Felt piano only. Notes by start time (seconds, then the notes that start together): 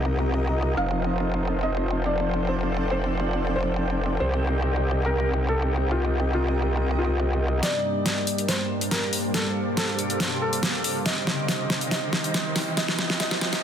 0.77 F5
1.63 D#5
2.06 D5
2.49 C5
2.91 C5
3.56 C5
4.20 C5
5.06 A#4
5.49 A4
5.92 F4
6.34 F4
6.99 F4
7.63 D5
8.49 C5
8.91 A#4
9.34 A4
9.77 A4
10.41 A4
11.06 D#5
11.91 D#5
12.77 D#5
13.20 D#5